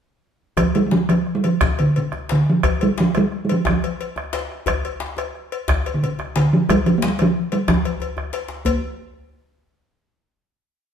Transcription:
0.57 F3, bombo rim, bombo low, cowbell, djembe bass
0.75 G3, cowbell
0.86 G3
0.91 F3, djembe slap
1.09 F3, bombo rim, cowbell, djembe tone
1.27 bombo rim
1.35 G3
1.44 F3, bombo rim, cowbell
1.61 C3, bombo rim, bombo low, djembe slap, djembe bass
1.78 D3, bombo rim, cowbell, djembe slap
1.96 C3, cowbell
2.12 bombo rim, djembe tone
2.29 D3, cowbell, djembe slap
2.46 F3, bombo rim
2.63 bombo rim, bombo low, cowbell, djembe bass
2.81 G3, cowbell
2.98 F3, djembe slap
3.14 G3, bombo rim, cowbell, djembe tone
3.32 bombo rim
3.45 G3
3.49 F3, bombo rim, cowbell
3.65 F3, bombo rim, bombo low, djembe slap, djembe bass
3.82 bombo rim, cowbell, djembe slap
4.01 cowbell
4.16 bombo rim, djembe tone
4.33 cowbell, djembe slap
4.52 bombo rim
4.66 bombo rim, bombo low, cowbell, djembe bass
4.85 cowbell
5.00 djembe slap
5.17 bombo rim, cowbell, djembe tone
5.35 bombo rim
5.52 bombo rim, cowbell
5.68 bombo rim, bombo low, djembe slap, djembe bass
5.85 bombo rim, cowbell, djembe slap
5.94 D3
6.03 C3, cowbell
6.19 bombo rim, djembe tone
6.36 D3, cowbell, djembe slap
6.53 F3, bombo rim
6.69 G3, bombo rim, bombo low, cowbell, djembe bass
6.86 F3, cowbell
6.98 A#3
7.02 G3, djembe slap
7.19 F3, bombo rim, cowbell, djembe tone
7.52 G3, cowbell
7.68 F3, bombo rim, bombo low, djembe slap, djembe bass
7.84 bombo rim, cowbell, djembe bass
8.00 cowbell, djembe bass
8.17 bombo rim, djembe bass
8.33 bombo rim, cowbell, djembe slap
8.48 djembe slap
8.65 A#3, bombo low, cowbell, djembe bass

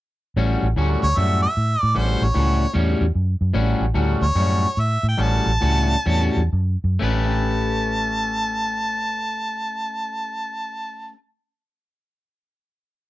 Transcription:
0.36 A1 A2 G3 C#4 F#4
0.63 A1
0.76 D2 A2 G3 C#4 F#4
1.03 D2 C#5
1.17 F#2 A2 G3 C#4 F#4 E5
1.42 E5
1.57 A2
1.80 A2 D5
1.95 A1 A2 G3 C#4 F#4 C5
2.22 A1 C#5
2.34 C#2 A2 G3 C#4 F#4
2.74 E2 A2 G3 C#4 F#4
3.01 E2
3.15 F#2
3.41 F#2
3.53 A1 A2 G3 C#4 F#4
3.80 A1
3.94 D2 A2 G3 C#4 F#4
4.21 D2 C#5
4.35 F#2 A2 G3 C#4 F#4
4.77 A2 E5
5.03 A2
5.08 G5
5.18 A1 A2 G3 C#4 F#4
5.22 A5
5.46 A1
5.61 C#2 A2 G3 C#4 F#4
6.06 E2 A2 G3 C#4 F#4
6.37 E2
6.53 F#2
6.84 F#2
6.99 A1 A3 C#4 G4 B4 A5

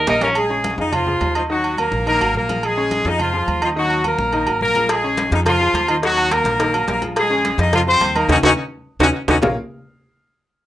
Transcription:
Already playing: D#4 D#5 D#6
0.07 A#1 A#3 D#4 A#4, cowbell, high conga, low timbale
0.21 F3 A#3 C#4 F4 A#4 F5, high conga, low timbale, low agogo
0.35 G#3 G#4, high conga, low agogo
0.50 C#3 C#4 C#5, high conga
0.64 high conga, low agogo
0.78 F2 F3 D#4 F4 G#4 D#5
0.93 F3 F4, high conga, low conga, low agogo
1.07 F3 F4 G#4, high conga, low conga
1.21 D#2, high conga, low timbale, low agogo
1.35 D#3 F3 D#4 F4 D#5, low agogo
1.49 D#3 F#3 D#4 F#4 D#5, high conga
1.63 high conga, low agogo
1.77 F#3 A#3 F#4 A#4, high conga, low agogo
1.92 A#1, high conga
2.06 D#3 A#3 D#4 A#4 D#5, high conga, low agogo
2.20 G#1 F#3 F#4 A#4, high conga, low agogo
2.34 A#1 A#3 A#4, high conga
2.49 F3 F4 G#4, high conga, low agogo
2.63 G#3 G#4, high conga, low agogo
2.77 C#3 C#4 C#5, high conga
2.91 high conga, low agogo
3.05 F2 F3 D#4 F4 G#4 D#5
3.20 F3 F4, high conga, low conga, low agogo
3.34 F3 F4 G#4, high conga
3.48 D#2, high conga, low agogo
3.62 D#3 F3 D#4 F4 D#5, low agogo
3.76 D#3 F#3 D#4 F#4 D#5, high conga
3.90 high conga, low agogo
4.04 F#3 A#3 F#4 A#4, high conga, low agogo
4.18 A#1, high conga
4.33 D#3 D#4 D#5, high conga, low agogo
4.47 G#1 F#3 F#4 A#4, high conga, low agogo
4.61 A#1 A#3 A#4, high conga
4.75 F3 F4 G#4, high conga, low agogo
4.89 G#3 G#4, cowbell, high conga, low agogo
5.03 C#3 C#4 C#5, high conga
5.17 cowbell, high conga, low agogo
5.31 F2 F3 D#4 F4 G#4 D#5, cowbell
5.46 F3 F4, cowbell, high conga, low conga, low agogo
5.60 F3 F4 G#4
5.73 D#2, cowbell, high conga, low agogo
5.88 D#3 F3 D#4 F4 D#5, low agogo
6.02 D#3 F#3 D#4 F#4 D#5, cowbell, high conga
6.17 high conga, low agogo
6.31 F#3 A#3 F#4 A#4, cowbell, high conga, low agogo
6.44 A#1, cowbell, high conga
6.59 D#3 D#4 D#5, cowbell, high conga, low agogo
6.73 F#3 F#4 A#4, high conga, low agogo
6.87 A#1 A#3 A#4, cowbell, high conga, low timbale
7.02 F3 F4 G#4, high conga, low agogo
7.16 G#3 G#4, cowbell, high conga, low agogo
7.30 C#3 C#4 C#5, high conga
7.45 cowbell, high conga, low agogo
7.58 F2 F3 D#4 F4 G#4 D#5, cowbell
7.73 F3 F4, cowbell, high conga, low conga, low agogo
7.87 F3 C4 F4 G#4 C5, high conga
8.01 D#2, cowbell, high conga, low agogo
8.15 D#3 A#3 D#4 A#4 D#5, high conga, low agogo
8.29 D#2 C#4 D#4 F#4, cowbell, low conga, high timbale
8.43 D#2 C#4 D#4 F#4, cowbell, low conga, high timbale
8.99 D#2 C#4 D#4 F#4, cowbell, low conga, high timbale
9.28 D#2 C#4 D#4 F#4, cowbell, low conga, high timbale
9.42 A#1 A#3 F4 G#4 A#4 C#5 F5, low bongo, low conga, low timbale

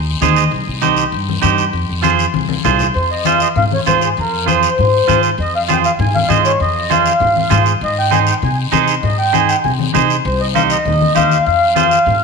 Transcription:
Already playing: D#2
0.21 D#2 D#4 G#4 C5 G#5, high conga, short guiro
0.36 D#5, short guiro
0.51 C2, long guiro
0.67 C2
0.82 D#4 G4 C5, high conga, short guiro
0.97 short guiro
1.12 G2, long guiro
1.29 high conga
1.42 G2 D#4 G4 C5, high conga, short guiro
1.58 short guiro
1.73 F2, long guiro
1.89 F2
2.02 F4 G#4 C5, high conga, short guiro
2.19 short guiro
2.34 C2, high conga, long guiro
2.49 high conga
2.64 C2 F4 G#4 C5, low conga, short guiro
2.79 low conga, short guiro
2.94 F2 C5, long guiro
3.11 D#5
3.25 F4 G#4 C5 F5, high conga, short guiro
3.40 D#5, short guiro
3.56 G#2 F5, low conga, long guiro
3.72 C#5, high conga
3.86 G#2 F4 G#4 C5, high conga, short guiro
4.01 G#4, short guiro
4.17 F2 A#4, long guiro
4.46 F4 G#4 C5, high conga, short guiro
4.63 short guiro
4.78 G#2, low conga, long guiro
5.08 G#2 F4 G#4 C5, high conga, short guiro
5.23 short guiro
5.38 F2 D#5, long guiro
5.56 F5
5.68 F4 G#4 C5 G5, high conga, short guiro
5.84 F5, short guiro
5.99 G#2 G#5, low conga, long guiro
6.15 F5, high conga
6.29 G#2 F4 G#4 C5 D#5, high conga, short guiro
6.45 C#5, short guiro
6.60 F2 D#5, long guiro
6.90 F4 G#4 C5 F5, high conga, short guiro
7.06 short guiro
7.20 G#2, low conga, long guiro
7.36 high conga
7.50 G#2 F4 G#4 C5, high conga, low conga, short guiro
7.66 short guiro
7.81 G#2 D#5, long guiro
7.99 G5
8.11 D#4 G#4 C5 G#5, high conga, short guiro
8.27 G5, short guiro
8.42 C3 G#5, low conga, long guiro
8.72 C3 D#4 G#4 C5, high conga, short guiro
8.88 short guiro
9.03 G#2 D#5, low conga, long guiro
9.19 G5
9.33 D#4 G#4 C5 G#5, high conga, short guiro
9.49 G5, short guiro
9.64 C3 G#5, low conga, long guiro
9.79 high conga
9.94 C3 D#4 G#4 C5, high conga, low conga, short guiro
10.10 short guiro
10.25 C2 C5, long guiro
10.40 D#5
10.55 D#4 G4 C5 F5, high conga, short guiro
10.70 D#5, short guiro
10.85 D#2, low conga, long guiro
11.01 high conga
11.15 D#2 D#4 G4 C5 F5, high conga, short guiro
11.31 short guiro
11.46 F2 F5, long guiro
11.76 F4 G#4 C5, high conga, short guiro
11.91 short guiro
12.06 G#2, low conga, long guiro

